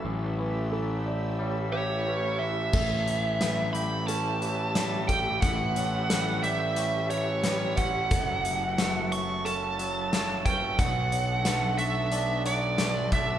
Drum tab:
CC |--------|x-------|--------|--------|
HH |--------|-xxxxxxx|xxxxxxxx|xxxxxxxx|
SD |--------|--o---o-|--o---o-|--o---o-|
BD |--------|o------o|o------o|o------o|

CC |--------|
HH |xxxxxxxx|
SD |--o---o-|
BD |o------o|